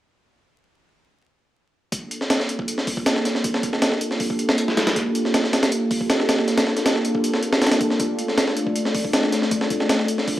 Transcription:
1.92 kick medium
1.92 closed hi-hat medium
2.11 closed hi-hat medium
2.21 snare soft
2.30 snare loud
2.30 closed hi-hat medium
2.40 snare soft
2.49 closed hi-hat medium
2.59 kick medium
2.68 closed hi-hat medium
2.78 snare soft
2.87 kick medium
2.87 open hi-hat medium
2.97 kick medium
3.06 snare loud
3.06 closed hi-hat medium
3.16 snare medium
3.25 snare soft
3.25 closed hi-hat medium
3.35 snare soft
3.44 kick loud
3.44 closed hi-hat medium
3.54 snare soft
3.63 kick medium
3.63 closed hi-hat medium
3.73 snare soft
3.82 snare loud
3.82 closed hi-hat medium
3.92 snare soft
4.01 closed hi-hat medium
4.11 snare soft
4.20 kick medium
4.20 open hi-hat medium
4.30 kick medium
4.39 closed hi-hat medium
4.49 snare loud
4.58 closed hi-hat medium
4.68 snare soft
4.77 snare medium
4.77 closed hi-hat medium
4.87 snare medium
4.87 closed hi-hat medium
4.96 kick loud
4.96 closed hi-hat medium
5.15 closed hi-hat medium
5.25 snare soft
5.34 snare loud
5.34 closed hi-hat medium
5.44 snare soft
5.53 snare medium
5.53 closed hi-hat medium
5.63 snare medium
5.63 closed hi-hat medium
5.72 closed hi-hat medium
5.91 kick medium
5.91 open hi-hat medium
6.01 kick medium
6.10 snare loud
6.10 closed hi-hat medium
6.20 snare soft
6.29 snare medium
6.29 closed hi-hat medium
6.39 snare soft
6.48 snare soft
6.48 closed hi-hat medium
6.57 snare loud
6.57 closed hi-hat medium
6.67 snare soft
6.77 snare soft
6.77 closed hi-hat medium
6.86 snare loud
6.86 closed hi-hat medium
6.96 snare soft
7.05 closed hi-hat medium
7.15 kick medium
7.24 closed hi-hat medium
7.34 snare soft
7.43 closed hi-hat medium
7.53 snare loud
7.62 snare medium
7.62 closed hi-hat medium
7.67 snare medium
7.67 closed hi-hat medium
7.72 snare medium
7.72 closed hi-hat medium
7.81 kick medium
7.81 closed hi-hat medium
7.90 snare soft
8.00 kick loud
8.00 closed hi-hat medium
8.19 closed hi-hat medium
8.28 snare soft
8.38 snare loud
8.38 closed hi-hat medium
8.48 snare soft
8.57 closed hi-hat medium
8.66 kick medium
8.76 closed hi-hat medium
8.85 snare soft
8.95 kick medium
8.95 open hi-hat medium
9.04 kick medium
9.13 snare loud
9.13 closed hi-hat medium
9.23 snare soft
9.32 snare soft
9.32 closed hi-hat medium
9.42 snare soft
9.51 kick medium
9.51 closed hi-hat medium
9.61 snare soft
9.70 kick medium
9.70 closed hi-hat medium
9.80 snare soft
9.89 snare loud
9.89 closed hi-hat medium
9.99 snare soft
10.08 closed hi-hat medium
10.18 snare soft
10.28 kick medium
10.28 open hi-hat medium

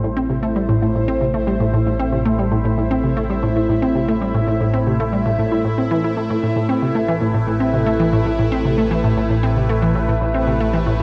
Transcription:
0.00 6.27 A1 medium
0.00 11.03 A2 medium
0.00 0.13 A2 medium
0.00 11.03 A3 medium
0.00 11.03 E4 medium
0.00 5.90 C5 medium
0.00 6.33 E5 medium
0.00 11.03 E5 medium
0.17 0.29 C4 medium
0.30 0.40 C3 medium
0.43 0.49 A3 medium
0.56 0.66 G3 medium
0.69 0.75 A2 loud
0.82 0.88 A2 medium
0.95 1.05 A2 medium
1.08 1.21 C4 loud
1.21 1.31 C3 medium
1.34 1.40 A3 medium
1.47 1.57 G3 medium
1.60 1.66 A2 medium
1.73 1.79 A2 medium
1.86 1.96 A2 medium
2.00 2.12 C4 loud
2.13 2.22 C3 medium
2.26 2.31 A3 medium
2.39 2.48 G3 medium
2.52 2.58 A2 medium
2.65 2.71 A2 medium
2.78 2.87 A2 medium
2.91 3.03 C4 loud
3.04 3.13 C3 medium
3.17 3.23 A3 loud
3.30 3.40 G3 medium
3.43 3.49 A2 medium
3.56 3.62 A2 medium
3.69 3.79 A2 medium
3.82 3.95 C4 loud
3.95 4.05 C3 medium
4.08 4.14 A3 medium
4.21 4.31 G3 medium
4.34 4.40 A2 medium
4.47 4.53 A2 medium
4.61 4.70 A2 medium
4.73 4.86 C4 medium
4.87 4.96 C3 medium
5.00 5.05 A3 medium
5.13 5.22 G3 medium
5.26 5.31 A2 loud
5.39 5.44 A2 medium
5.52 5.64 E4 medium
5.65 5.74 A2 medium
5.75 5.84 C4 medium
5.75 11.03 B4 medium
5.91 6.00 E3 loud
6.04 6.16 E4 medium
6.17 6.29 A3 medium
6.30 11.03 A1 medium
6.30 6.36 A2 medium
6.30 11.03 G4 medium
6.43 6.49 A2 medium
6.56 6.66 A2 medium
6.69 6.81 C4 loud
6.82 6.92 C3 medium
6.95 7.01 A3 medium
7.08 7.14 E3 loud
7.21 7.27 A2 medium
7.34 7.40 A2 medium
7.47 7.57 A2 medium
7.60 7.73 C4 medium
7.74 7.83 C3 medium
7.87 7.92 A3 loud
8.00 8.05 E3 loud
8.13 8.18 A2 medium
8.26 8.31 A2 medium
8.39 8.48 A2 medium
8.52 8.64 C4 loud
8.65 8.74 C3 medium
8.78 8.84 A3 loud
8.91 8.97 E3 medium
9.04 9.10 A2 medium
9.17 9.23 A2 medium
9.30 9.40 A2 medium
9.43 9.55 C4 loud
9.56 9.66 C3 medium
9.69 9.75 A3 medium
9.82 9.88 E3 medium
9.95 10.01 A2 medium
10.08 10.14 A2 medium
10.21 10.31 A2 medium
10.34 10.47 C4 medium
10.47 10.57 C3 medium
10.60 10.66 A3 loud
10.73 10.79 E3 medium
10.86 10.92 A2 medium
11.00 11.03 A2 medium

